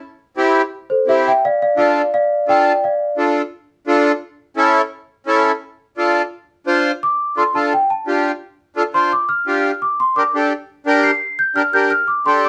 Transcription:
0.37 accordion C4 E4 G4
0.90 celesta A4 C5
1.07 accordion C4 E4 G4, celesta C5 E5
1.27 celesta E5 G5
1.45 celesta D5 F5
1.62 celesta D5 F5
1.77 accordion D4 F4 A4, celesta D5 F5
2.14 celesta D5 F5
2.47 accordion D4 F4 A4, celesta D5 G5
2.84 celesta D5 F5
3.17 accordion D4 F4 A4
3.87 accordion D4 F4 A4
4.57 accordion C#4 E4 A4
5.26 accordion C#4 E4 A4
5.97 accordion D4 F4 A4
6.67 accordion D4 F4 C5
7.03 celesta D6
7.37 accordion D4 F4 A4, celesta C6
7.55 accordion D4 F4 A4, celesta A5
7.74 celesta G5
7.90 celesta A5
8.07 accordion D4 F4 G4
8.76 accordion D4 F4 A4
8.94 accordion D4 F4 C5, celesta C6
9.13 celesta D6
9.29 celesta F6
9.47 accordion D4 F4 G4
9.82 celesta D6
10.00 celesta C6
10.16 accordion D4 G4 A#4, celesta D6
10.35 accordion D4 G4 A4
10.86 accordion D4 G4 A#4
11.04 celesta C7
11.39 celesta G6
11.56 accordion D4 G4 A#4, celesta F6
11.73 accordion D4 G4 A#4, celesta G6
11.90 celesta F6
12.08 celesta D6
12.26 accordion D4 G4 A4, celesta C6
12.45 celesta D6

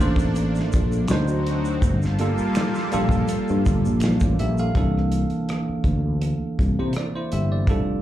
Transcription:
Already playing: analog synth pad A3 A#3 D4
0.00 fretless electric bass A1, tine electric piano A#3 D4 A4 C5, shaker
0.16 kick, shaker
0.35 closed hi-hat, shaker
0.55 snare, shaker
0.72 fretless electric bass A#1, kick, closed hi-hat, shaker
0.92 shaker
1.08 fretless electric bass D2, analog synth pad D3 C4 D#4 F#4, tine electric piano F#3 D4 D#4, finger snap, snare, closed hi-hat, shaker
1.12 tine electric piano C5
1.28 shaker
1.47 closed hi-hat
1.65 shaker
1.82 fretless electric bass G1, analog synth pad G3 A#3 F4 A4, kick, closed hi-hat, shaker
2.02 snare, shaker
2.19 tine electric piano G3 A#3 F4 A4, closed hi-hat
2.38 muted fretless electric bass stroke, shaker
2.55 finger snap, snare, closed hi-hat, shaker
2.75 snare, shaker
2.92 fretless electric bass A#1, tine electric piano G3 A#3 F4 A4, closed hi-hat, shaker
3.09 kick, shaker
3.28 closed hi-hat, shaker
3.48 fretless electric bass G2, shaker
3.66 fretless electric bass G1, kick, closed hi-hat, shaker
3.85 fretless electric bass A#1, shaker
4.00 tine electric piano F4 D5, finger snap, snare, closed hi-hat, shaker
4.20 fretless electric bass A1, kick, shaker
4.39 fretless electric bass A#1, tine electric piano G4 E5, closed hi-hat
4.58 tine electric piano A4 F5, shaker
4.75 fretless electric bass C2, tine electric piano E3 A#3 D4 A4, kick, closed hi-hat
4.97 cross-stick
5.12 closed hi-hat
5.30 closed hi-hat
5.49 cross-stick, closed hi-hat
5.69 muted fretless electric bass stroke
5.84 fretless electric bass D2, kick, closed hi-hat
6.22 closed hi-hat
6.59 fretless electric bass C2, kick, closed hi-hat
6.79 fretless electric bass C3, tine electric piano E4 C5
6.93 tine electric piano D5, cross-stick, closed hi-hat
7.16 tine electric piano E4 C5
7.32 fretless electric bass G1, tine electric piano G4 E5, closed hi-hat
7.52 tine electric piano D5
7.67 fretless electric bass F1, tine electric piano G3 D4 F4 A4, kick, closed hi-hat

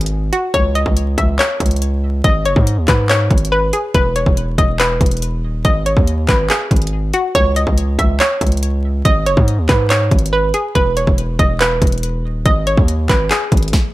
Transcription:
Already playing: 808-style bass G#1, synth pluck G#4
0.01 closed hi-hat
0.06 closed hi-hat
0.33 synth pluck F#4, closed hi-hat
0.54 808-style bass C#2, synth pluck C#5, kick, closed hi-hat
0.75 synth pluck D#5, closed hi-hat
0.86 808-style bass C#2, kick
0.97 closed hi-hat
1.18 808-style bass C#2, synth pluck E5, kick, closed hi-hat
1.39 synth pluck C#5, clap, closed hi-hat
1.60 808-style bass C#2, kick, closed hi-hat
1.66 closed hi-hat
1.71 closed hi-hat
1.76 closed hi-hat
1.82 closed hi-hat
2.24 808-style bass G#1, synth pluck D#5, kick, closed hi-hat
2.45 808-style bass F#1, synth pluck C#5, closed hi-hat
2.56 808-style bass G#2, kick
2.67 closed hi-hat
2.77 808-style bass D#2
2.88 808-style bass G#2, synth pluck B4, kick, clap, closed hi-hat
3.09 synth pluck C#5, clap, closed hi-hat
3.31 808-style bass G#1, kick, closed hi-hat
3.38 closed hi-hat
3.45 closed hi-hat
3.52 synth pluck B4
3.73 synth pluck G#4, closed hi-hat
3.94 808-style bass E1, synth pluck B4, kick, closed hi-hat
4.16 synth pluck C#5, closed hi-hat
4.26 808-style bass E1, kick
4.37 closed hi-hat
4.58 808-style bass E1, synth pluck D#5, kick, closed hi-hat
4.80 synth pluck B4, clap, closed hi-hat
5.01 808-style bass E1, kick, closed hi-hat
5.06 closed hi-hat
5.11 closed hi-hat
5.17 closed hi-hat
5.22 closed hi-hat
5.43 808-style bass D#1
5.65 808-style bass G#1, synth pluck D#5, kick, closed hi-hat
5.86 synth pluck C#5, closed hi-hat
5.97 808-style bass D#2, kick
6.07 closed hi-hat
6.28 808-style bass G#1, synth pluck B4, kick, clap, closed hi-hat
6.50 synth pluck G#4, clap, closed hi-hat
6.71 808-style bass G#1, kick, closed hi-hat
6.76 closed hi-hat
6.82 closed hi-hat
6.87 closed hi-hat
7.13 synth pluck F#4, closed hi-hat
7.35 808-style bass C#2, synth pluck C#5, kick, closed hi-hat
7.56 synth pluck D#5, closed hi-hat
7.67 808-style bass C#2, kick
7.78 closed hi-hat
7.99 808-style bass C#2, synth pluck E5, kick, closed hi-hat
8.20 synth pluck C#5, clap, closed hi-hat
8.41 808-style bass C#2, kick, closed hi-hat
8.47 closed hi-hat
8.52 closed hi-hat
8.57 closed hi-hat
8.63 closed hi-hat
9.05 808-style bass G#1, synth pluck D#5, kick, closed hi-hat
9.26 808-style bass F#1, synth pluck C#5, closed hi-hat
9.37 808-style bass G#2, kick
9.48 closed hi-hat
9.58 808-style bass D#2
9.69 808-style bass G#2, synth pluck B4, kick, clap, closed hi-hat
9.90 synth pluck C#5, clap, closed hi-hat
10.11 808-style bass G#1, kick, closed hi-hat
10.19 closed hi-hat
10.26 closed hi-hat
10.33 synth pluck B4
10.54 synth pluck G#4, closed hi-hat
10.75 808-style bass E1, synth pluck B4, kick, closed hi-hat
10.97 synth pluck C#5, closed hi-hat
11.07 808-style bass E1, kick
11.18 closed hi-hat
11.39 808-style bass E1, synth pluck D#5, kick, closed hi-hat
11.60 synth pluck B4, clap, closed hi-hat
11.82 808-style bass E1, kick, closed hi-hat
11.87 closed hi-hat
11.92 closed hi-hat
11.98 closed hi-hat
12.03 closed hi-hat
12.24 808-style bass D#1
12.46 808-style bass G#1, synth pluck D#5, kick, closed hi-hat
12.67 synth pluck C#5, closed hi-hat
12.77 808-style bass D#2, kick
12.88 closed hi-hat
13.09 808-style bass G#1, synth pluck B4, kick, clap, closed hi-hat
13.31 synth pluck G#4, clap, closed hi-hat
13.52 808-style bass G#1, kick, closed hi-hat
13.57 closed hi-hat
13.63 closed hi-hat
13.68 closed hi-hat
13.73 kick, snare

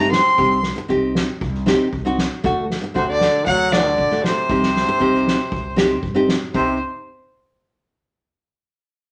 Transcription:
Already playing: upright bass G2, trombone A3
0.00 nylon-string guitar C4 D#4 G4, violin A#5, snare
0.11 trombone C4, violin C6, snare
0.37 upright bass C2, nylon-string guitar C4 D#4 G4, kick
0.63 snare
0.76 muted nylon-string guitar stroke
0.88 upright bass C2, nylon-string guitar C4 D#4 G4, kick
1.15 snare
1.41 upright bass C2, kick
1.54 snare
1.66 nylon-string guitar C4 D#4 G4, snare
1.93 upright bass C2, kick
2.05 nylon-string guitar C4 D#4 F#4
2.18 snare
2.44 upright bass D2, nylon-string guitar A3 D4 F#4, kick
2.70 snare
2.82 muted nylon-string guitar stroke
2.94 upright bass D2, trombone C3, nylon-string guitar A3 D4 F#4, violin C5, kick
3.09 trombone D3, violin D5
3.21 snare
3.46 upright bass D2, trombone F#3, violin F#5, kick
3.71 trombone D3, nylon-string guitar A3 D4 F#4, violin D5, snare
3.98 upright bass A1, kick
4.11 nylon-string guitar A3 D4 F#4, snare
4.24 trombone C3, violin C5, snare
4.49 upright bass C2, nylon-string guitar C4 D#4 G4, kick
4.63 snare
4.76 snare
4.87 muted nylon-string guitar stroke
5.00 upright bass C2, nylon-string guitar C4 D#4 G4, kick
5.15 snare
5.27 snare
5.52 upright bass C2, kick
5.76 nylon-string guitar C4 D#4 G4, snare
6.03 upright bass G2, kick
6.14 nylon-string guitar C4 D#4 G4
6.28 snare
6.53 upright bass C2, trombone C3, nylon-string guitar C4 D#4 G4, violin C5, kick, crash

